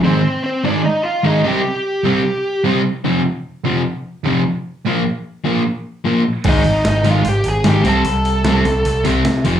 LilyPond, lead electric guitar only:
\new Staff \with { instrumentName = "Lead electric guitar" } { \time 4/4 \key c \mixolydian \tempo 4 = 150 <c' c''>4 <c' c''>8 <d' d''>8 <ees' ees''>8 <f' f''>8 <ees' ees''>8 <g' g''>8~ | <g' g''>2~ <g' g''>8 r4. | r1 | r1 |
<ees' ees''>4 <ees' ees''>8 <f' f''>8 <g' g''>8 <aes' aes''>8 <g' g''>8 <a' a''>8~ | <a' a''>2~ <a' a''>8 r4. | }